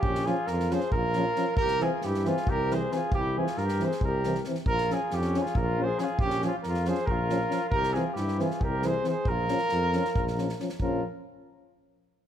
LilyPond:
<<
  \new Staff \with { instrumentName = "Cornet" } { \time 7/8 \tempo 4 = 137 g'8 aes'8 bes'8 c''8 bes'4. | bes'8 aes'8 g'8 aes'8 bes'8 c''8 aes'8 | g'8 aes'8 bes'8 c''8 bes'4 r8 | bes'8 aes'8 g'8 aes'8 bes'8 c''8 aes'8 |
g'8 aes'8 bes'8 c''8 bes'4. | bes'8 aes'8 g'8 aes'8 bes'8 c''8 c''8 | bes'2. r8 | bes'8 r2. | }
  \new Staff \with { instrumentName = "Flugelhorn" } { \time 7/8 des'8 f'8 f'8 aes'8 f'4. | g'8 f'8 e'8 f'8 g'8 aes'8 f'8 | e'8 f'8 g'8 aes'8 g'4 r8 | f'8 f'8 des'8 f'8 f'8 aes'8 f'8 |
des'8 f'8 f'8 aes'8 f'4. | g'8 f'8 e'8 f'8 g'8 aes'8 aes'8 | f'2. r8 | f'8 r2. | }
  \new Staff \with { instrumentName = "Euphonium" } { \time 7/8 r8 des'8 r8 des'8 r8 des'8 des'8 | r8 c'8 r8 c'8 r8 c'8 c'8 | r8 c'8 r8 c'8 r8 c'8 c'8 | r8 des'8 r8 des'8 r8 des'8 des'8 |
r8 des'8 r8 des'8 r8 des'8 des'8 | r8 c'8 r8 c'8 r8 c'8 c'8 | r8 des'8 r8 des'8 r8 des'8 des'8 | des'8 r2. | }
  \new Staff \with { instrumentName = "Euphonium" } { \clef bass \time 7/8 r8 f8 r8 f8 r8 f8 f8 | r8 e8 r8 e8 r8 e8 e8 | r8 e8 r8 e8 r8 e8 e8 | r8 f8 r8 f8 r8 f8 f8 |
r8 f8 r8 f8 r8 f8 f8 | r8 e8 r8 e8 r8 e8 e8 | r8 f8 r8 f8 r8 f8 f8 | f8 r2. | }
  \new Staff \with { instrumentName = "Tuba" } { \clef bass \time 7/8 bes,,4 f,4 bes,,4. | c,4 g,4 c,4. | c,4 g,4 c,4. | bes,,4 f,4 bes,,4. |
bes,,4 f,4 bes,,4. | c,4 g,4 c,4. | bes,,4 f,4 bes,,4. | bes,,8 r2. | }
  \new DrumStaff \with { instrumentName = "Drums" } \drummode { \time 7/8 bd16 sn16 sn8 sn16 sn16 sn16 sn16 bd8 sn8 sn8 | bd16 sn16 sn8 sn16 sn16 sn16 sn16 bd8 sn8 sn8 | bd8. sn16 sn16 sn16 sn16 sn16 bd8 sn16 sn16 sn16 sn16 | bd16 sn16 sn8 sn16 sn16 sn16 sn16 bd4 sn8 |
bd16 sn16 sn8 sn16 sn16 sn16 sn16 bd8 sn8 sn8 | bd16 sn16 sn8 sn16 sn16 sn16 sn16 bd8 sn8 sn8 | bd8 sn16 sn16 sn8 sn16 sn16 bd16 sn16 sn16 sn16 sn16 sn16 | bd4 r4 r4. | }
>>